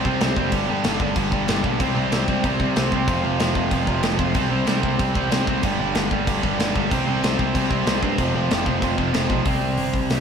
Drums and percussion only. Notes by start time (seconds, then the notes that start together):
0.05 kick
0.21 snare, crash
0.36 kick
0.52 kick, crash
0.84 snare, crash
1.00 kick
1.16 kick, crash
1.32 kick
1.48 snare, crash
1.64 kick
1.80 kick, crash
2.12 snare, crash
2.28 kick
2.44 kick, crash
2.60 kick
2.76 snare, crash
2.92 kick
3.08 kick, crash
3.40 snare, crash
3.55 kick
3.71 kick, crash
3.87 kick
4.03 snare, crash
4.19 kick
4.34 kick, crash
4.67 snare, crash
4.83 kick
4.99 kick, crash
5.15 kick
5.31 snare, crash
5.47 kick
5.63 kick, crash
5.95 snare, crash
6.11 kick
6.27 kick, crash
6.43 kick
6.60 snare, crash
6.76 kick
6.91 kick, crash
7.23 snare, crash
7.39 kick
7.55 kick, crash
7.71 kick
7.87 snare, crash
8.03 kick
8.18 kick, crash
8.51 snare, crash
8.66 kick
8.82 kick, crash
8.98 kick
9.14 snare, crash
9.30 kick
9.46 kick, open hi-hat
9.78 open hi-hat
9.94 kick
10.10 snare, open hi-hat